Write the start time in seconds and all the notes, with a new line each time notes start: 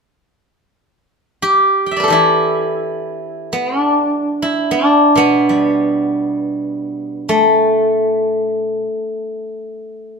1.42 G4
1.86 G5
1.91 E5
1.96 B4 D5
2.04 A4
2.08 E3 G4
2.12 E4
3.53 B3
3.80 D4
4.42 E4
4.71 D4
5.15 B2 B3
5.49 G3
7.29 A3